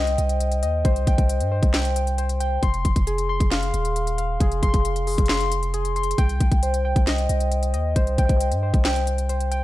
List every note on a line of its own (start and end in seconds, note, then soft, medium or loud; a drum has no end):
0.00 0.17 C2 loud
0.00 0.84 C5 medium
0.00 0.61 D#5 loud
0.00 1.06 G5 medium
0.07 closed hi-hat medium
0.18 0.64 C2 loud
0.18 closed hi-hat medium
0.29 closed hi-hat medium
0.40 closed hi-hat medium
0.52 closed hi-hat medium
0.63 0.84 D#2 loud
0.63 1.96 D#5 medium
0.63 closed hi-hat medium
0.85 1.06 C2 loud
0.85 1.50 C5 loud
0.85 kick loud
0.85 closed hi-hat medium
0.96 closed hi-hat medium
1.07 1.18 C2 loud
1.07 1.73 G5 loud
1.07 kick medium
1.07 closed hi-hat medium
1.18 1.42 C2 loud
1.18 kick loud
1.18 closed hi-hat medium
1.29 closed hi-hat medium
1.40 1.62 G2 loud
1.40 closed hi-hat medium
1.52 2.17 C5 medium
1.63 2.59 C2 loud
1.63 kick loud
1.63 closed hi-hat medium
1.74 2.39 G5 loud
1.74 snare loud
1.74 clap medium
1.74 closed hi-hat medium
1.85 closed hi-hat medium
1.96 closed hi-hat medium
2.07 closed hi-hat medium
2.18 2.63 C5 medium
2.18 closed hi-hat medium
2.29 closed hi-hat medium
2.40 2.63 G5 loud
2.40 closed hi-hat medium
2.63 2.84 F1 loud
2.63 3.28 C6 loud
2.63 kick loud
2.63 closed hi-hat medium
2.74 closed hi-hat medium
2.85 2.96 F1 loud
2.85 kick medium
2.85 closed hi-hat medium
2.96 3.39 F1 loud
2.96 kick loud
2.96 closed hi-hat medium
3.07 4.39 G#4 medium
3.07 closed hi-hat medium
3.18 closed hi-hat medium
3.29 4.61 C6 loud
3.40 3.72 F1 loud
3.40 kick loud
3.40 closed hi-hat medium
3.52 4.17 F5 loud
3.52 snare loud
3.52 clap medium
3.52 closed hi-hat medium
3.63 closed hi-hat medium
3.74 4.38 D#1 loud
3.74 closed hi-hat medium
3.85 closed hi-hat medium
3.96 closed hi-hat medium
4.07 closed hi-hat medium
4.18 5.52 F5 medium
4.18 closed hi-hat medium
4.40 4.62 F1 loud
4.40 5.06 G#4 loud
4.40 kick loud
4.40 closed hi-hat medium
4.52 closed hi-hat medium
4.63 4.73 F1 loud
4.63 5.28 C6 loud
4.63 kick medium
4.63 closed hi-hat medium
4.74 5.16 F1 loud
4.74 kick loud
4.74 closed hi-hat medium
4.85 closed hi-hat medium
4.96 closed hi-hat medium
5.07 5.73 G#4 medium
5.07 open hi-hat medium
5.18 6.14 F1 loud
5.18 kick loud
5.18 closed hi-hat medium
5.26 5.95 C6 loud
5.26 snare loud
5.26 clap medium
5.26 closed hi-hat medium
5.33 closed hi-hat soft
5.40 closed hi-hat medium
5.52 closed hi-hat medium
5.63 closed hi-hat medium
5.74 6.18 G#4 loud
5.74 closed hi-hat medium
5.85 closed hi-hat medium
5.96 6.18 C6 medium
5.96 closed hi-hat soft
6.03 closed hi-hat medium
6.11 closed hi-hat medium
6.18 6.40 C2 loud
6.18 6.84 G5 loud
6.18 kick loud
6.18 closed hi-hat medium
6.29 closed hi-hat medium
6.40 6.51 C2 loud
6.40 kick medium
6.40 closed hi-hat medium
6.52 6.94 C2 loud
6.52 kick loud
6.52 closed hi-hat medium
6.63 7.95 C5 medium
6.63 closed hi-hat medium
6.74 closed hi-hat medium
6.85 8.17 G5 medium
6.96 7.28 C2 loud
6.96 kick loud
6.96 closed hi-hat medium
7.07 7.73 D#5 loud
7.07 snare loud
7.07 clap medium
7.07 closed hi-hat medium
7.18 closed hi-hat medium
7.29 7.75 C2 loud
7.29 closed hi-hat medium
7.40 closed hi-hat medium
7.52 closed hi-hat medium
7.63 closed hi-hat medium
7.74 7.95 D#2 loud
7.74 9.07 D#5 medium
7.74 closed hi-hat medium
7.96 8.17 C2 loud
7.96 8.62 C5 loud
7.96 kick loud
7.96 closed hi-hat medium
8.07 closed hi-hat medium
8.18 8.29 C2 loud
8.18 8.84 G5 medium
8.18 kick medium
8.18 closed hi-hat medium
8.29 8.53 C2 loud
8.29 kick loud
8.29 closed hi-hat medium
8.40 closed hi-hat medium
8.52 8.73 G2 loud
8.52 closed hi-hat medium
8.63 9.28 C5 medium
8.74 9.64 C2 loud
8.74 kick loud
8.74 closed hi-hat medium
8.85 9.50 G5 loud
8.85 snare loud
8.85 clap medium
8.85 closed hi-hat medium
8.96 closed hi-hat medium
9.07 closed hi-hat medium
9.18 closed hi-hat medium
9.29 9.64 C5 medium
9.29 closed hi-hat medium
9.40 closed hi-hat medium
9.51 9.64 G5 loud
9.51 closed hi-hat medium